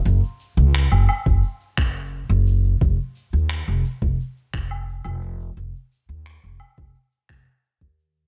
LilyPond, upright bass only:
\new Staff \with { instrumentName = "Upright bass" } { \clef bass \time 4/4 \key ees \dorian \tempo 4 = 87 ges,,16 r8 des,8 ges,,16 r16 ges,,16 r8 ges,,8. ges,,8. | f,,16 r8 ees,8 f,,16 r16 f,,16 r8 f,,8. f,,8. | f,,16 r8 ees,8 f,,16 r16 f,,16 r8 f,,16 r8 ees,8. | }